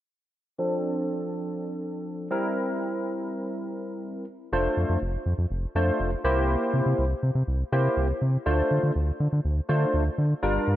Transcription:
0.58 F3 C4 D4 A4
2.31 G3 C4 E4 A#4
4.52 F1 A3 D4 F4 C5
4.77 F2
4.89 F2
5.02 F1
5.26 F2
5.38 F2
5.51 F1
5.75 F2 A3 D4 F4 C5
6.00 F1
6.24 C2 A#3 E4 G4 C5
6.74 C3
6.86 C3
6.99 C2
7.23 C3
7.35 C3
7.48 C2
7.72 C3 A#3 E4 G4 C5
7.97 C2
8.22 C3
8.46 D2 A3 D4 F4 C5
8.71 D3
8.83 D3
8.95 D2
9.20 D3
9.32 D3
9.45 D2
9.69 D3 A3 D4 F4 C5
9.94 D2
10.18 D3
10.42 G1 G3 D4 F4 A#4
10.67 G2

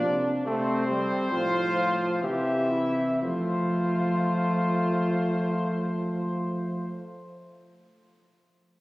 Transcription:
Already playing: F3 D4 D5
0.04 C3
0.45 C3 A3 C4 C5
0.88 G3
1.31 A2 F3 F4
2.22 C3 E3 G4 E5
2.71 E4
3.22 F3 A3 F4 C5

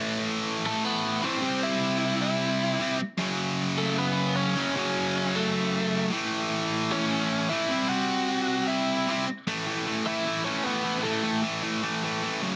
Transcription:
Already playing: A2 E3 A3
0.65 A3 A4
0.85 B3 B4
1.22 A2 E3 A3 C4 C5
1.41 C3 G3 C4
1.63 E4 E5
2.21 E4 E5
2.79 C3 G3 C4
3.18 F#2 C#3 F#3
3.78 A3 A4
3.98 B3 B4
4.36 C#4 C#5
4.56 F#2 C#3 F#3
4.75 F#2 C#3 F#3 C#4 C#5
5.35 A3 A4
6.12 A2 E3 A3
6.92 C#4 C#5
7.49 A2 E3 A3 E4 E5
7.70 C3 G3 C4
7.89 F#4 F#5
8.68 E4 E5
9.07 C3 G3 C4
9.47 A2 E3 A3
9.66 A2 E3 A3
9.86 A2 E3 A3
10.05 A2 E3 A3 E4 E5
10.26 A2 E3 A3
10.44 A2 E3 A3 C#4 C#5
10.64 A2 E3 A3 B3 B4
10.84 A2 E3 A3
11.03 A2 E3 A3 A4
11.24 A2 E3 A3
11.43 A2 E3 A3
11.62 A2 E3 A3
11.83 A2 E3 A3
12.03 A2 E3 A3
12.23 A2 E3 A3
12.43 F#2 C#3 F#3

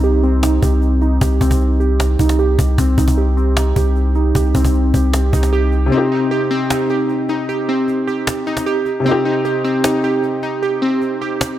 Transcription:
Already playing: C2 C4 D#4
0.04 G4, cajon slap
0.23 C4, cajon slap
0.43 D#4, cajon slap
0.62 C2 G4, cajon bass
0.82 cajon slap
1.01 D#4, cajon slap
1.21 C2 G4, cajon bass
1.41 C2 C4, cajon bass
1.51 cajon bass
1.60 cajon slap
1.80 G4, cajon slap
2.00 cajon slap
2.19 C2 D#4, cajon bass
2.29 cajon slap
2.39 G4
2.59 C2, cajon bass
2.78 C2 C4, cajon bass
2.98 C2 D#4, cajon bass
3.08 cajon bass
3.17 G4, cajon slap
3.37 C4, cajon slap
3.57 D#4, cajon slap
3.76 C2 G4, cajon bass
3.96 cajon slap
4.15 D#4, cajon slap
4.35 C2 G4, cajon bass
4.55 C2 C4, cajon bass
4.64 cajon bass
4.74 cajon slap
4.94 C2 G4, cajon bass
5.13 cajon slap
5.33 C2 D#4, cajon bass
5.43 cajon slap
5.53 G4
5.72 cajon slap
5.86 C3 C4
5.92 C4 D#4, cajon slap
5.98 G4
6.12 D#4
6.31 G4, cajon slap
6.51 C4, cajon slap
6.70 D#4, cajon slap
6.90 G4, cajon slap
7.09 cajon slap
7.29 D#4, cajon slap
7.49 G4, cajon slap
7.69 C4
7.88 cajon slap
8.07 G4, cajon slap
8.27 cajon slap
8.46 D#4, cajon slap
8.57 cajon slap
8.66 G4
8.86 cajon slap
9.00 C3 C4
9.06 C4 D#4, cajon slap
9.11 G4
9.25 D#4
9.45 G4, cajon slap
9.64 C4, cajon slap
9.84 D#4, cajon slap
10.03 G4, cajon slap
10.23 cajon slap
10.42 D#4, cajon slap
10.63 G4, cajon slap
10.82 C4
11.02 cajon slap
11.21 G4, cajon slap
11.41 cajon slap

